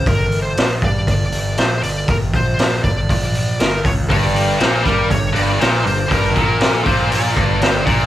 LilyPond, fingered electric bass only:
\new Staff \with { instrumentName = "Fingered electric bass" } { \clef bass \time 4/4 \key g \minor \tempo 4 = 119 g,,4 bes,,8 g,8 g,,8 g,,8 bes,,8 g,,8 | g,,8 bes,,4 g,,8 bes,,4 g,,8 cis,8 | g,,4 bes,,8 g,8 g,,8 g,,8 bes,,8 g,,8 | g,,8 bes,,4 bes,,4 g,,4 bes,,8 | }